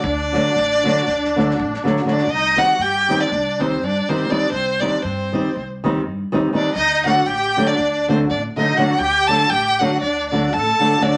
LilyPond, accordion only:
\new Staff \with { instrumentName = "Accordion" } { \time 9/8 \tempo 4. = 80 d'2.~ d'8 r8 d'8 | ees'8 fis'8 g'8. d'8. c'8 d'8 c'8 d'8 | c'8 d'8 c'4 r2 d'8 | ees'8 fis'8 g'8. d'8. c'8 d'8 ees'8 fis'8 |
g'8 a'8 g'8 fis'8 d'8 d'8 a'4 d'8 | }